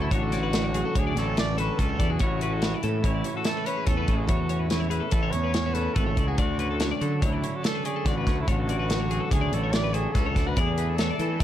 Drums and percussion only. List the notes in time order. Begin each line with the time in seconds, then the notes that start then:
0.11 kick, closed hi-hat
0.32 snare, closed hi-hat
0.53 snare, closed hi-hat
0.74 closed hi-hat
0.95 kick, closed hi-hat
1.17 snare, closed hi-hat
1.37 snare, closed hi-hat
1.58 closed hi-hat
1.79 kick, closed hi-hat
2.00 kick, closed hi-hat
2.19 kick, closed hi-hat
2.41 closed hi-hat
2.62 snare, closed hi-hat
2.83 closed hi-hat
3.04 kick, closed hi-hat
3.24 closed hi-hat
3.45 snare, closed hi-hat
3.66 closed hi-hat
3.87 kick, closed hi-hat
4.08 kick, closed hi-hat
4.29 kick, closed hi-hat
4.49 closed hi-hat
4.70 snare, closed hi-hat
4.91 closed hi-hat
5.11 kick, closed hi-hat
5.33 closed hi-hat
5.54 snare, closed hi-hat
5.75 closed hi-hat
5.96 kick, closed hi-hat
6.17 kick, closed hi-hat
6.38 kick, closed hi-hat
6.59 closed hi-hat
6.80 snare, closed hi-hat
7.01 closed hi-hat
7.22 kick, closed hi-hat
7.44 closed hi-hat
7.64 snare, closed hi-hat
7.85 closed hi-hat
8.06 kick, snare, closed hi-hat
8.27 kick, snare, closed hi-hat
8.48 kick, closed hi-hat
8.69 closed hi-hat
8.90 snare, closed hi-hat
9.11 closed hi-hat
9.31 kick, closed hi-hat
9.53 closed hi-hat
9.73 snare, closed hi-hat
9.94 closed hi-hat
10.15 kick, snare, closed hi-hat
10.36 kick, snare, closed hi-hat
10.57 kick, closed hi-hat
10.78 closed hi-hat
10.98 snare, closed hi-hat
11.19 closed hi-hat
11.40 kick, closed hi-hat